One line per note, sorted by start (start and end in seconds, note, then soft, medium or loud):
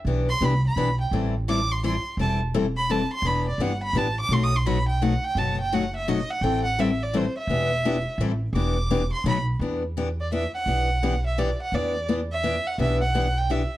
0.05 0.33 B1 medium
0.05 0.27 E3 medium
0.05 0.28 B3 medium
0.05 0.28 D4 medium
0.05 0.28 G4 medium
0.29 0.46 C6 loud
0.41 0.71 C2 medium
0.41 0.52 E3 loud
0.41 0.53 B3 medium
0.41 0.53 D4 medium
0.41 0.53 G4 medium
0.41 0.65 B5 loud
0.67 0.98 B5 medium
0.76 1.06 B1 medium
0.76 0.88 E3 medium
0.76 0.88 B3 medium
0.76 0.88 D4 medium
0.76 0.88 G4 medium
1.01 1.12 G5 medium
1.11 1.96 A1 medium
1.11 1.33 E3 medium
1.11 1.34 G3 medium
1.11 1.34 C4 medium
1.11 1.34 E4 medium
1.11 1.34 A4 medium
1.48 1.59 E3 medium
1.48 1.59 G3 medium
1.48 1.59 C4 loud
1.48 1.59 E4 loud
1.48 1.59 A4 loud
1.48 1.73 D6 loud
1.72 1.84 C6 loud
1.84 1.94 E3 medium
1.84 1.95 G3 medium
1.84 1.95 C4 medium
1.84 1.95 E4 loud
1.84 1.95 A4 medium
1.84 2.17 C6 medium
2.17 3.02 E1 medium
2.17 2.40 E3 medium
2.17 2.40 G3 medium
2.17 2.40 C4 medium
2.17 2.40 E4 medium
2.17 2.40 A4 medium
2.17 2.33 A5 loud
2.54 2.65 E3 medium
2.54 2.65 G3 medium
2.54 2.65 C4 loud
2.54 2.65 E4 loud
2.54 2.66 A4 loud
2.77 2.92 B5 loud
2.89 3.00 E3 medium
2.89 3.00 G3 medium
2.89 3.01 C4 medium
2.89 3.01 E4 medium
2.89 3.01 A4 medium
2.89 3.12 A5 medium
3.13 3.28 C6 loud
3.22 3.51 E1 medium
3.22 3.46 E3 medium
3.22 3.46 B3 medium
3.22 3.46 D4 medium
3.22 3.46 G4 medium
3.27 3.47 B5 loud
3.49 3.63 D5 medium
3.58 3.89 G1 medium
3.58 3.71 E3 medium
3.58 3.71 B3 medium
3.58 3.71 D4 loud
3.58 3.71 G4 loud
3.58 3.82 F#5 medium
3.83 3.99 B5 loud
3.93 4.24 A1 medium
3.93 4.06 E3 medium
3.93 4.06 B3 medium
3.93 4.06 D4 medium
3.93 4.07 G4 loud
3.98 4.18 A5 loud
4.20 4.34 D6 loud
4.29 5.14 B1 medium
4.29 4.52 B2 medium
4.29 4.52 F#3 medium
4.29 4.52 A3 medium
4.29 4.52 D#4 medium
4.29 4.52 F#4 medium
4.33 4.45 C6 loud
4.44 4.58 D#6 loud
4.56 4.68 C6 medium
4.66 4.77 B2 medium
4.66 4.77 F#3 loud
4.66 4.77 A3 medium
4.66 4.77 D#4 loud
4.66 4.77 F#4 loud
4.66 4.88 B5 loud
4.88 5.04 G5 medium
5.02 5.12 B2 medium
5.02 5.13 F#3 medium
5.02 5.13 A3 medium
5.02 5.13 D#4 medium
5.02 5.13 F#4 loud
5.02 5.26 F#5 medium
5.25 5.40 G5 loud
5.35 6.20 F#1 medium
5.35 5.58 B2 medium
5.35 5.58 F#3 medium
5.35 5.58 A3 medium
5.35 5.58 D#4 medium
5.35 5.58 F#4 medium
5.35 5.59 A5 loud
5.61 5.76 G5 loud
5.73 5.83 B2 loud
5.73 5.83 F#3 medium
5.73 5.83 A3 medium
5.73 5.84 D#4 medium
5.73 5.84 F#4 loud
5.73 5.95 F#5 medium
5.96 6.11 E5 loud
6.08 6.18 B2 medium
6.08 6.19 F#3 loud
6.08 6.19 A3 medium
6.08 6.19 D#4 loud
6.08 6.19 F#4 loud
6.08 6.32 D#5 medium
6.30 6.44 F#5 loud
6.41 7.26 A1 medium
6.41 6.64 E3 medium
6.41 6.64 G3 medium
6.41 6.64 C4 medium
6.41 6.64 E4 medium
6.41 6.64 A4 medium
6.41 6.64 G5 loud
6.64 6.82 F#5 loud
6.79 6.89 E3 medium
6.79 6.89 G3 medium
6.79 6.90 C4 medium
6.79 6.90 E4 loud
6.79 6.90 A4 loud
6.79 7.04 E5 medium
7.03 7.18 D5 medium
7.13 7.24 E3 loud
7.13 7.25 G3 medium
7.13 7.25 C4 medium
7.13 7.25 E4 medium
7.13 7.25 A4 loud
7.13 7.37 C5 medium
7.38 8.17 E5 loud
7.47 8.04 E1 medium
7.47 7.70 E3 medium
7.47 7.70 B3 medium
7.47 7.71 D4 medium
7.47 7.71 G4 medium
7.85 7.96 E3 loud
7.85 7.96 B3 loud
7.85 7.96 D4 loud
7.85 7.96 G4 loud
8.18 8.47 A1 loud
8.18 8.31 E3 medium
8.18 8.31 G3 loud
8.18 8.31 C4 medium
8.18 8.31 E4 loud
8.18 8.31 A4 medium
8.53 9.10 E1 loud
8.53 8.76 E3 medium
8.53 8.76 B3 medium
8.53 8.76 D4 medium
8.53 8.76 G4 medium
8.53 9.08 D6 medium
8.90 9.01 E3 medium
8.90 9.01 B3 loud
8.90 9.02 D4 loud
8.90 9.02 G4 loud
9.13 9.25 C6 loud
9.24 9.53 B1 medium
9.24 9.36 B2 medium
9.24 9.37 F#3 loud
9.24 9.37 A3 medium
9.24 9.37 D#4 loud
9.24 9.37 F#4 loud
9.24 9.40 B5 loud
9.59 10.45 E2 medium
9.59 9.82 E3 medium
9.59 9.82 B3 medium
9.59 9.82 D4 medium
9.59 9.83 G4 medium
9.97 10.08 E3 medium
9.97 10.08 B3 medium
9.97 10.08 D4 medium
9.97 10.08 G4 medium
10.20 10.32 D5 medium
10.32 10.43 E3 medium
10.32 10.43 B3 medium
10.32 10.43 D4 medium
10.32 10.43 G4 medium
10.32 10.53 E5 medium
10.55 11.21 F#5 loud
10.66 11.51 B1 medium
10.66 10.88 E3 medium
10.66 10.88 B3 medium
10.66 10.88 D4 medium
10.66 10.88 G4 medium
11.03 11.14 E3 medium
11.03 11.14 B3 loud
11.03 11.14 D4 medium
11.03 11.14 G4 medium
11.27 11.41 E5 medium
11.38 11.49 E3 medium
11.38 11.49 B3 medium
11.38 11.49 D4 medium
11.38 11.49 G4 loud
11.38 11.60 D5 medium
11.62 11.76 F#5 medium
11.72 12.57 E2 medium
11.72 11.94 E3 medium
11.72 11.94 B3 medium
11.72 11.94 D4 medium
11.72 11.95 G4 medium
11.72 12.09 D5 medium
12.09 12.20 E3 medium
12.09 12.20 B3 medium
12.09 12.20 D4 medium
12.09 12.20 G4 loud
12.32 12.68 E5 loud
12.43 12.55 E3 medium
12.43 12.55 B3 medium
12.43 12.55 D4 loud
12.43 12.55 G4 loud
12.67 12.80 F#5 loud
12.78 13.63 B1 medium
12.78 13.00 E3 medium
12.78 13.00 B3 medium
12.78 13.00 D4 medium
12.78 13.00 G4 medium
12.78 13.00 E5 loud
13.01 13.40 F#5 loud
13.15 13.26 E3 medium
13.15 13.26 B3 medium
13.15 13.26 D4 medium
13.15 13.26 G4 loud
13.38 13.53 G5 medium
13.50 13.61 E3 medium
13.50 13.61 B3 medium
13.50 13.61 D4 medium
13.50 13.61 G4 medium
13.50 13.77 E5 medium